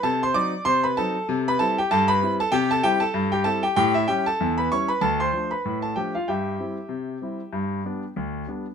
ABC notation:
X:1
M:2/4
L:1/16
Q:"Swing 16ths" 1/4=96
K:C
V:1 name="Grand piano"
[Aa] [cc'] [dd']2 [cc'] [Bb] [Aa]2- | [Aa] [Bb] [Aa] [Gg] [Aa] [Bb]2 [Aa] | [Gg] [Aa] [Gg] [Aa]2 [Gg] [Aa] [Gg] | [Gg] [Ee] [Gg] [Aa]2 [Bb] [^c^c'] [Bb] |
[Aa] [cc']2 [Bb]2 [Aa] [Gg] [Ff] | [Geg]8- | [Geg]4 z4 |]
V:2 name="Grand piano" clef=bass
C,2 [_G,C_E]2 C,2 [G,CE]2 | C,2 [G,CE]2 G,,2 [G,CE]2 | C,2 [G,CE]2 G,,2 [G,CE]2 | A,,2 [G,^CE]2 E,,2 [G,CE]2 |
D,,2 [F,A,D]2 A,,2 [F,A,D]2 | G,,2 [G,CE]2 C,2 [G,CE]2 | G,,2 [G,B,D]2 D,,2 [G,B,D]2 |]